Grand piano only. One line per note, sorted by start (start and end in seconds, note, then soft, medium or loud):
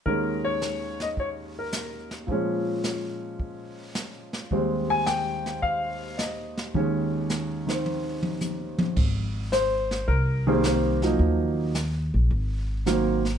0.06 2.29 D#2 soft
0.06 2.29 D#3 soft
0.06 2.29 G#3 soft
0.06 2.30 C#4 soft
0.06 0.45 A#4 medium
0.45 1.02 C#5 medium
1.02 1.07 D#5 medium
1.20 1.28 C#5 medium
1.59 2.09 A#4 medium
2.27 4.51 A#2 medium
2.27 4.51 F3 medium
2.27 4.51 G#3 soft
2.32 4.53 C#4 medium
4.52 6.73 D#2 soft
4.52 6.75 G3 soft
4.52 6.74 G#3 soft
4.52 6.75 C4 medium
4.90 5.08 G#5 medium
5.06 5.59 G5 medium
5.62 6.20 F5 medium
6.18 6.62 D#5 medium
6.75 8.97 D#2 medium
6.75 7.65 D#3 soft
6.75 8.98 G#3 soft
6.75 8.98 C#4 medium
7.67 8.97 D#3 soft
7.67 8.98 C4 soft
9.52 10.10 C5 medium
10.08 10.44 A#4 medium
10.47 10.99 D#3 medium
10.47 10.99 G3 medium
10.47 10.99 A#3 medium
10.47 11.00 C4 medium
10.47 10.65 G#4 medium
10.66 11.09 C5 medium
11.02 11.72 F3 medium
11.02 11.72 F#3 soft
11.02 11.73 A#3 soft
11.02 11.73 D#4 medium
12.86 13.21 D#3 soft
12.86 13.21 F#3 soft
12.86 13.22 A#3 medium
12.86 13.22 C4 medium